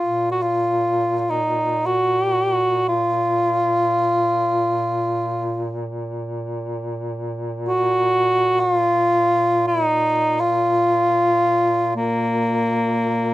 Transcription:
0.00 13.34 A#2 soft
0.00 0.31 F4 medium
0.32 0.44 F#4 soft
0.42 1.19 F4 medium
1.19 1.31 F4 soft
1.30 1.88 D#4 medium
1.86 2.87 F#4 medium
2.89 5.82 F4 medium
7.68 8.60 F#4 medium
8.60 8.72 F#4 medium
8.72 9.67 F4 medium
9.67 9.84 E4 medium
9.84 10.41 D#4 medium
10.40 11.96 F4 medium
11.96 13.34 A#3 medium

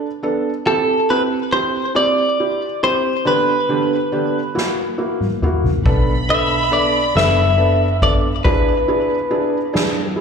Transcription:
0.23 0.49 B3 medium
0.23 0.49 D4 medium
0.23 0.49 A4 medium
0.67 0.92 C4 medium
0.67 0.93 E4 medium
0.67 0.92 G4 loud
0.67 1.11 A4 medium
1.10 1.36 C4 medium
1.10 1.36 E4 medium
1.10 1.36 G4 medium
1.10 1.22 B4 loud
1.53 1.79 C4 medium
1.53 1.79 E4 medium
1.53 1.79 G4 medium
1.53 1.93 C5 loud
1.95 2.21 C4 medium
1.95 2.21 E4 medium
1.95 2.22 G4 medium
1.95 2.83 D5 loud
2.40 2.66 E4 medium
2.40 2.65 G4 medium
2.83 3.09 C4 medium
2.83 3.09 E4 medium
2.83 3.09 G4 medium
2.83 3.23 C5 loud
3.25 3.51 D3 medium
3.25 3.51 B3 medium
3.25 3.51 D4 medium
3.25 3.52 G4 loud
3.25 4.96 B4 medium
3.69 3.95 D3 medium
3.69 3.95 B3 medium
3.69 3.95 D4 medium
3.69 3.95 G4 medium
4.12 4.38 D3 medium
4.12 4.38 B3 medium
4.12 4.38 D4 medium
4.12 4.39 G4 medium
4.55 4.82 A#3 medium
4.55 4.82 E4 medium
4.55 4.82 F#4 medium
4.55 snare medium
4.98 5.25 A#3 medium
4.98 5.25 E4 medium
4.98 5.25 F#4 medium
5.21 mid tom medium
5.42 5.69 A#3 medium
5.42 5.69 E4 medium
5.42 5.69 F#4 medium
5.42 mid tom medium
5.64 floor tom medium
5.85 7.12 B1 loud
5.85 6.12 B3 medium
5.85 6.12 D4 medium
5.85 6.12 A4 loud
5.85 8.41 B5 loud
5.85 kick loud
5.85 ride medium
6.28 6.55 B3 medium
6.28 6.55 D4 medium
6.28 6.55 A4 medium
6.28 6.73 E5 loud
6.28 ride soft
6.71 6.98 B3 medium
6.71 6.98 D4 medium
6.71 6.98 A4 medium
6.71 7.16 D5 loud
6.71 ride soft
7.15 8.41 F#1 medium
7.15 7.41 B3 medium
7.15 7.42 D4 medium
7.15 7.42 A4 medium
7.15 7.99 E5 medium
7.15 snare loud
7.58 7.84 B3 medium
7.58 7.84 D4 medium
7.58 7.84 A4 medium
7.58 ride soft
8.02 8.28 B3 medium
8.02 8.28 D4 medium
8.02 8.28 A4 medium
8.02 8.15 D5 medium
8.02 kick medium
8.02 ride soft
8.44 8.71 D4 loud
8.44 8.71 E4 medium
8.44 8.71 G#4 loud
8.44 10.13 B4 medium
8.44 kick loud
8.44 ride medium
8.88 9.14 D4 medium
8.88 9.14 E4 medium
8.88 9.15 G#4 medium
8.88 ride soft
9.31 9.57 D4 medium
9.31 9.57 E4 medium
9.31 9.57 G#4 medium
9.31 ride soft
9.73 10.00 D4 medium
9.73 10.00 E4 medium
9.73 10.00 G#4 medium
9.73 snare loud
9.73 ride medium
10.16 10.21 E4 medium
10.16 10.21 G#4 medium
10.16 ride soft

